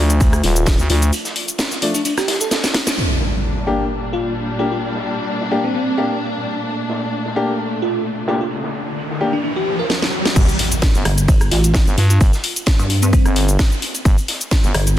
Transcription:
Already playing: D2 F3 A3 D4
0.10 closed hi-hat, shaker
0.21 kick, closed hi-hat, shaker
0.33 cross-stick, closed hi-hat, shaker
0.44 D#1 F4, snare, closed hi-hat, open hi-hat
0.56 closed hi-hat, shaker
0.66 kick, snare, closed hi-hat, shaker
0.79 D2, closed hi-hat, shaker
0.90 D2 F3 A3 D4 F4, closed hi-hat, open hi-hat
1.02 closed hi-hat, shaker
1.13 closed hi-hat, shaker
1.25 snare, closed hi-hat, shaker
1.36 open hi-hat
1.48 closed hi-hat, shaker
1.58 snare, closed hi-hat, shaker
1.71 snare, closed hi-hat, shaker
1.82 F3 A3 D4, closed hi-hat, open hi-hat
1.95 D4, open hi-hat, shaker
2.05 D4, closed hi-hat, shaker
2.17 G4, cross-stick, snare, shaker
2.28 snare, closed hi-hat, open hi-hat
2.41 A4, snare, closed hi-hat, shaker
2.51 A4, snare, closed hi-hat, shaker
2.63 snare, closed hi-hat, shaker
2.74 snare, closed hi-hat, open hi-hat
2.87 snare, closed hi-hat, shaker
2.97 A#2 G3 D4, closed hi-hat, impact
3.20 snare, closed hi-hat
3.44 closed hi-hat
3.57 snare
3.67 A#3 D4 G4
3.90 closed hi-hat
4.03 closed hi-hat
4.12 F4, snare
4.35 closed hi-hat
4.49 closed hi-hat
4.59 A#3 D4 F4 G4
4.72 F4
4.82 closed hi-hat
4.94 snare
5.05 closed hi-hat
5.18 closed hi-hat
5.28 closed hi-hat
5.41 snare
5.51 A#3 D4 G4, closed hi-hat
5.64 C4
5.74 C4, closed hi-hat
5.98 A#3 D4 G4, snare
6.21 open hi-hat
6.44 closed hi-hat
6.56 closed hi-hat
6.67 A3, closed hi-hat, riser
6.79 closed hi-hat
6.90 snare, closed hi-hat
7.13 closed hi-hat
7.26 snare
7.36 A#3 D4 G4, closed hi-hat
7.59 closed hi-hat
7.72 closed hi-hat
7.82 F4, snare, closed hi-hat
8.06 closed hi-hat
8.18 closed hi-hat
8.28 A#3 D4 F4 G4, snare, closed hi-hat
8.41 F4
8.51 closed hi-hat
8.64 snare
8.75 closed hi-hat
8.87 closed hi-hat
8.98 closed hi-hat
9.10 snare
9.21 A#3 D4 G4, closed hi-hat
9.33 D4
9.44 D4
9.56 G4
9.79 A#4
9.90 A#4, snare
10.02 snare
10.25 snare
10.36 G1, kick, closed hi-hat, crash, impact, shaker
10.49 closed hi-hat, shaker
10.59 snare, closed hi-hat, open hi-hat
10.72 closed hi-hat, shaker
10.82 kick, snare, closed hi-hat, shaker
10.94 G1, snare, closed hi-hat, shaker
11.05 G1, cross-stick, closed hi-hat, open hi-hat
11.18 closed hi-hat, shaker
11.28 kick, closed hi-hat, shaker
11.40 cross-stick, closed hi-hat, shaker
11.51 A1 F4, snare, closed hi-hat, open hi-hat
11.64 closed hi-hat, shaker
11.74 kick, snare, closed hi-hat, shaker
11.87 G1, closed hi-hat, shaker
11.98 G2 F4, closed hi-hat, open hi-hat
12.10 F4, closed hi-hat, shaker
12.21 G1, kick, closed hi-hat, shaker
12.33 snare, closed hi-hat, shaker
12.44 closed hi-hat, open hi-hat
12.56 closed hi-hat, shaker
12.66 kick, snare, closed hi-hat, shaker
12.79 G2, snare, closed hi-hat, shaker
12.90 closed hi-hat, open hi-hat
13.02 C4, closed hi-hat, shaker
13.13 C4, kick, closed hi-hat, shaker
13.25 G1, cross-stick, closed hi-hat, shaker
13.36 snare, closed hi-hat, open hi-hat
13.49 closed hi-hat, shaker
13.59 kick, snare, closed hi-hat, open hi-hat, shaker
13.72 shaker
13.82 closed hi-hat, open hi-hat
13.95 closed hi-hat, shaker
14.05 G1, kick, closed hi-hat, shaker
14.18 closed hi-hat, shaker
14.28 snare, closed hi-hat, open hi-hat
14.41 closed hi-hat, shaker
14.51 kick, snare, closed hi-hat, shaker
14.64 G1, snare, closed hi-hat, shaker
14.74 G1, cross-stick, closed hi-hat, open hi-hat
14.87 closed hi-hat, shaker

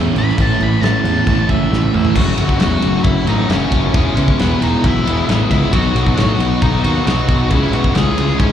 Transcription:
Already playing: A2 E3 A3 C#4 E4
0.15 A1 A2 E3 A3 C#4 E4 B5, crash
0.29 snare
0.38 A1 A2 E3 A3 C#4 E4 A5, kick, crash
0.59 A1 A2 E3 A3 C#4 E4 B5, crash
0.81 A1 A2 E3 A3 C#4 E4 A5, snare, crash
1.03 E2 A2 E3 A3 C#4 E4, crash
1.25 A1 A2 E3 A3 C#4 E4, kick, crash
1.47 F#1 A2 E3 A3 C#4 E4 E5, kick, crash
1.69 A1 A2 E3 A3 C#4 E4, snare
1.83 high tom
1.92 A1 A2 E3 A3 C#4 E4 E5, mid tom
2.05 floor tom
2.14 F#1 F#2 C#3 F#3 A3 C#4 F#4 F#5, kick, crash
2.37 F#1 F#3 A3 C#4 F#4, ride
2.49 kick
2.59 E2 F#3 A3 C#4 F#4 F#5, snare, ride
2.80 F#1 F#3 A3 C#4 F#4, ride
3.04 F#1 F#3 A3 C#4 E4 F#4 E5, kick, ride
3.26 A1 C#3 F#3 A3 C#4 D#4 F#4 D#5, ride
3.30 F#2
3.48 F#1 F#2 C#3 F#3 A3 C#4 F#4 C#5, snare, ride
3.52 F#3 A3 C#4
3.71 F#1 F#3 A3 C#4 F#4, kick, ride
3.93 E1 E3 G#3 B3 C#4 E4 C#5, kick, ride
4.15 C#2 E3 G#3 B3 E4, ride
4.28 kick
4.38 E1 E3 G#3 B3 E4 B4, snare, ride
4.59 E1 E3 G#3 B3 D#4 E4 D#5, ride
4.83 B1 E3 G#3 B3 E4 E5, kick, ride
5.04 E1 E3 G#3 B3 E4, ride
5.08 E3
5.27 A1 E3 G#3 B3 E4, snare, ride
5.50 C#2 E3 G#3 B3 E4 E5, kick, ride
5.72 B1 B2 F#3 B3 D#4 F#4 F#5, kick, ride
5.96 B1 B2 F#3 B3 D#4, ride
6.07 kick
6.17 A2 B2 F#3 B3 D#4 F#4 F#5, snare, ride
6.39 B1 B2 F#3 B3 D#4, ride
6.61 B1 B2 F#3 B3 D#4 D#5, kick, ride
6.83 D#2 B2 F#3 B3 D#4 F#4 F#5, ride
6.87 B2
7.05 B1 B2 F#3 B3 D#4 F#4 F#5, snare, ride
7.28 B1 B2 F#3 B3 D#4, kick, ride
7.50 C#2 C#3 E3 G#3 C#4 E4 E5, kick, ride
7.73 B2 C#3 E3 G#3 C#4 F#4 F#5, ride
7.84 kick
7.95 C#2 C#3 E3 G#3 C#4 G#4 G#5, snare, ride
8.18 C#2 C#3 E3 G#3 C#4, ride
8.39 G#2 C#3 E3 G#3 C#4 C#5, kick, ride

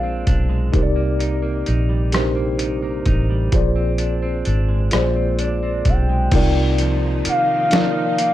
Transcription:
Already playing: A#1 A#2 G#3 D4 F4 G#4 C5 D5 F5
0.03 C4
0.27 B1 D4, kick, closed hi-hat
0.49 G#3
0.72 C2 C3 D#4 G4 A#4, kick, closed hi-hat
0.76 C5
0.83 D5
0.95 A#3
1.19 D#4, closed hi-hat
1.42 A#3
1.66 A#1 D#4, closed hi-hat
1.89 G3
2.12 C3 D4 G4 A#4 C5, cross-stick, closed hi-hat
2.19 D#4
2.35 A#3
2.59 D#4, closed hi-hat
2.82 A#3
3.06 A1 D#4, kick, closed hi-hat
3.30 G3
3.52 A#1 A#2 F4 G#4 C5 D5, kick, closed hi-hat
3.76 C4
3.98 D4, closed hi-hat
4.22 C4
4.45 G#1 D4, closed hi-hat
4.69 G#3
4.91 A#1 A#2 F4 G#4 C5 D5, cross-stick, closed hi-hat
5.16 C4
5.39 D4 D5, closed hi-hat
5.63 C4
5.85 B1 D4 G5, kick, closed hi-hat
6.09 G#3
6.31 C2 C3 D#3 F3 A#3 D#4 F4 A#4, kick, closed hi-hat, crash
6.36 D5
6.78 F3, closed hi-hat
7.25 A#3 F5, muted fingered electric bass stroke, closed hi-hat
7.70 F3 D#4 F4 A#4, snare, closed hi-hat
7.74 D5
8.18 A#3, closed hi-hat

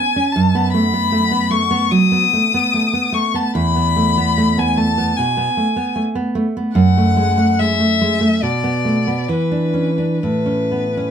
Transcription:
Already playing: B3 G#5
0.16 C#4
0.32 F#2 A5
0.55 B3
0.72 A3 B5
0.94 B3
1.12 A3
1.31 B3
1.51 A3 C#6
1.71 B3
1.91 F#3 D#6
2.12 B3
2.33 A3
2.54 B3
2.74 A3
2.93 B3
3.12 A3 C#6
3.34 B3 A5
3.55 E2 B5
3.76 B3
3.97 A3
4.18 B3
4.38 A3
4.58 B3 G#5
4.77 A3 A5
4.98 B3
5.17 B2 G#5
5.37 B3
5.57 A3
5.76 B3
5.96 A3
6.15 B3
6.35 A3
6.57 B3
6.75 F#2 F#5
6.97 A3
7.17 G#3
7.38 A3
7.59 G#3 E5
7.80 A3
8.01 G#3
8.21 A3
8.43 B2 D5
8.64 B3
8.85 A3
9.07 B3
9.28 E3 B4
9.52 D4
9.74 C#4
9.98 D4
10.21 A2 B4
10.46 C#4
10.71 B3
10.97 C#4

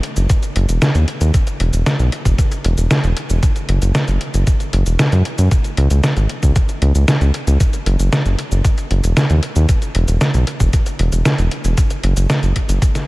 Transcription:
0.03 closed hi-hat
0.16 F#1, closed hi-hat, cabasa
0.29 kick, closed hi-hat, cabasa
0.43 closed hi-hat, cabasa
0.56 F#1, closed hi-hat
0.69 E1, closed hi-hat, cabasa
0.82 snare, closed hi-hat, cabasa
0.95 D#2, closed hi-hat, cabasa
1.08 closed hi-hat
1.21 D#2, closed hi-hat, cabasa
1.34 kick, closed hi-hat, cabasa
1.47 closed hi-hat, cabasa
1.60 E1, closed hi-hat
1.73 E1, closed hi-hat, cabasa
1.86 snare, closed hi-hat, cabasa
1.99 B1, closed hi-hat, cabasa
2.12 closed hi-hat
2.25 E1, kick, closed hi-hat, cabasa
2.38 kick, closed hi-hat, cabasa
2.52 closed hi-hat, cabasa
2.64 E1, closed hi-hat
2.78 E1, closed hi-hat, cabasa
2.91 snare, closed hi-hat, cabasa
3.04 E1, closed hi-hat, cabasa
3.17 closed hi-hat
3.30 E1, closed hi-hat, cabasa
3.43 kick, closed hi-hat, cabasa
3.56 closed hi-hat, cabasa
3.69 F#1, closed hi-hat
3.82 F#1, closed hi-hat, cabasa
3.95 snare, closed hi-hat, cabasa
4.08 F#1, closed hi-hat, cabasa
4.21 closed hi-hat
4.34 F#1, closed hi-hat, cabasa
4.47 kick, closed hi-hat, cabasa
4.60 closed hi-hat, cabasa
4.73 F#1, closed hi-hat
4.86 E1, closed hi-hat, cabasa
4.99 snare, closed hi-hat, cabasa
5.12 F#2, closed hi-hat, cabasa
5.25 closed hi-hat
5.38 F#2, closed hi-hat, cabasa
5.51 kick, closed hi-hat, cabasa
5.64 closed hi-hat, cabasa
5.77 C#2, closed hi-hat
5.90 C#2, closed hi-hat, cabasa
6.04 snare, closed hi-hat, cabasa
6.17 G#1, closed hi-hat, cabasa
6.29 closed hi-hat
6.43 C#2, kick, closed hi-hat, cabasa
6.56 kick, closed hi-hat, cabasa
6.69 closed hi-hat, cabasa
6.82 C#2, closed hi-hat
6.95 C#2, closed hi-hat, cabasa
7.08 snare, closed hi-hat, cabasa
7.21 C#2, closed hi-hat, cabasa
7.34 closed hi-hat
7.47 C#2, closed hi-hat, cabasa
7.60 kick, closed hi-hat, cabasa
7.73 closed hi-hat, cabasa
7.86 F#1, closed hi-hat
7.99 F#1, closed hi-hat, cabasa
8.13 snare, closed hi-hat, cabasa
8.25 F#1, closed hi-hat, cabasa
8.39 closed hi-hat
8.52 F#1, closed hi-hat, cabasa
8.65 kick, closed hi-hat, cabasa
8.78 closed hi-hat, cabasa
8.91 F#1, closed hi-hat
9.04 E1, closed hi-hat, cabasa
9.17 snare, closed hi-hat, cabasa
9.30 D#2, closed hi-hat, cabasa
9.43 closed hi-hat
9.56 D#2, closed hi-hat, cabasa
9.69 kick, closed hi-hat, cabasa
9.82 closed hi-hat, cabasa
9.95 E1, closed hi-hat
10.08 E1, closed hi-hat, cabasa
10.21 snare, closed hi-hat, cabasa
10.34 B1, closed hi-hat, cabasa
10.47 closed hi-hat
10.60 E1, kick, closed hi-hat, cabasa
10.73 kick, closed hi-hat, cabasa
10.86 closed hi-hat, cabasa
10.99 E1, closed hi-hat
11.12 E1, closed hi-hat, cabasa
11.25 snare, closed hi-hat, cabasa
11.38 E1, closed hi-hat, cabasa
11.51 closed hi-hat
11.64 E1, closed hi-hat, cabasa
11.77 kick, closed hi-hat, cabasa
11.90 closed hi-hat, cabasa
12.04 F#1, closed hi-hat
12.17 F#1, closed hi-hat, cabasa
12.30 snare, closed hi-hat, cabasa
12.43 F#1, closed hi-hat, cabasa
12.56 kick, closed hi-hat
12.69 F#1, closed hi-hat, cabasa
12.82 kick, closed hi-hat, cabasa
12.95 snare, closed hi-hat, cabasa

